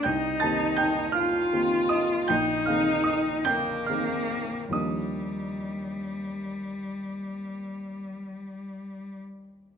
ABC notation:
X:1
M:12/8
L:1/16
Q:3/8=48
K:Eb
V:1 name="Grand piano"
[gg']2 [=a=a']2 [gg']2 [ff']4 [ee']2 [gg']2 [ff']2 [ee']2 [gg']2 [ff']4 | [ee']16- [ee']6 z2 |]
V:2 name="Grand piano"
C,,2 [E,B,CG]6 [E,B,CG]4 B,,,2 [E,B,CA]6 [E,B,CA]4 | [E,,F,B,DG]24 |]
V:3 name="Cello"
E6 F6 E6 B,6 | G,16- G,4- G, z3 |]